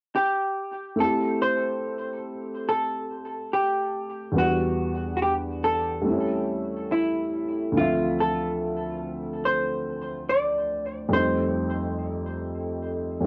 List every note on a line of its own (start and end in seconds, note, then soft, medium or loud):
0.16 0.95 G4 medium
0.96 4.31 A3 medium
0.96 4.33 C4 medium
1.00 4.34 E4 medium
1.00 4.35 G4 medium
1.00 1.41 A4 loud
1.42 2.68 C5 medium
2.69 3.55 A4 loud
3.53 4.38 G4 medium
4.32 6.00 E2 medium
4.32 6.00 G3 medium
4.36 6.02 B3 medium
4.36 6.03 D4 medium
4.36 5.16 F#4 medium
4.36 6.04 F#5 medium
5.17 5.22 F#4 medium
5.22 5.33 G4 medium
5.64 6.94 A4 loud
6.02 7.69 G3 medium
6.02 7.70 A3 medium
6.07 6.14 C4 soft
6.07 7.73 E4 medium
6.13 7.75 C#4 medium
6.92 7.71 E4 medium
7.72 11.07 D2 medium
7.72 7.82 E3 soft
7.76 11.09 A3 medium
7.76 11.10 C4 medium
7.76 8.19 F4 medium
7.80 11.11 F3 medium
7.80 11.11 E5 medium
8.20 8.99 A4 medium
9.45 10.25 C5 loud
10.29 10.91 D5 medium
10.91 11.13 C5 medium
11.09 13.18 F2 medium
11.09 13.19 G3 medium
11.09 13.20 A3 medium
11.13 13.21 C4 medium
11.13 13.22 D#4 medium
11.13 13.26 C5 loud
13.21 13.26 F2 medium
13.21 13.26 G3 soft
13.21 13.26 A3 soft